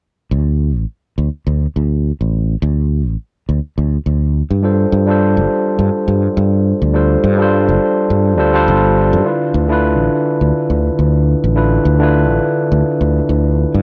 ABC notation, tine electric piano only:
X:1
M:4/4
L:1/16
Q:"Swing 16ths" 1/4=104
K:Ddor
V:1 name="Tine electric piano"
z16 | z16 | [G,DFAc]3 [G,DFAc]12- [G,DFAc] | [G,DFAc]3 [G,DFAc]6- [G,DFAc] [G,DFAc] [G,DFAc] z4 |
[D,DEFB]3 [D,DEFB]12- [D,DEFB] | [D,DEFB]3 [D,DEFB]12- [D,DEFB] |]